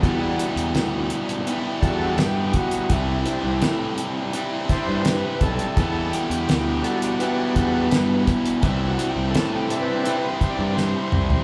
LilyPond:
<<
  \new Staff \with { instrumentName = "Transistor combo organ" } { \time 4/4 \key e \minor \tempo 4 = 84 << { r2 r8 a'8 g'8 fis'8 | e'8 r16 c'16 e'8 r4 c''8 b'8 a'8~ | a'8 g'4 a'8 b'4. r8 | \tuplet 3/2 { e'8 fis'8 g'8 a'8 g'8 b'8~ b'8 c''8 d''8 } c''4 | } \\ { <g d' fis'>8 r2 <g d' fis'>8 r4 | r8 <c' d' e'>8 r4. <c' d' e'>8 r4 | r4. <g d' fis'>4. r4 | r4. <c' d' e'>8 r2 | } >> }
  \new Staff \with { instrumentName = "Overdriven electric guitar" } { \clef bass \time 4/4 \key e \minor <e, b, e g b e'>2 <e, b, e g b e'>2 | <c e g c' e'>2 <c e g c' e'>2 | <e, b, e g b e'>2 <e, b, e g b e'>2 | <c e g c' e'>2 <c e g c' e'>2 | }
  \new Staff \with { instrumentName = "Picked electric bass" } { \clef bass \time 4/4 \key e \minor e,8 r16 e,16 d,8 r4 e,8 g,8 r8 | c,8 r16 c,16 a,8 r4 r16 g,8 r16 b,,16 r16 | e,8 r16 e,16 d,8 r4 e,8 g,8 r8 | c,8 r16 c,16 a,8 r4 r16 g,8 r16 c,16 r16 | }
  \new DrumStaff \with { instrumentName = "Drums" } \drummode { \time 4/4 <hh bd>8 hh16 hh16 <hh sn>8 hh16 hh16 hh8 <hh bd>8 <hh sn>8 <hh bd>16 hh16 | <hh bd>8 hh8 <hh sn>8 hh8 hh8 <hh bd sn>8 <hh sn>8 <hh bd>16 hh16 | <hh bd>8 hh16 hh16 <hh sn>8 hh16 hh16 hh8 <hh bd>8 <hh sn>8 <hh bd>16 hh16 | <hh bd>8 hh8 <hh sn>8 hh8 hh8 <hh bd>8 sn8 toml16 tomfh16 | }
>>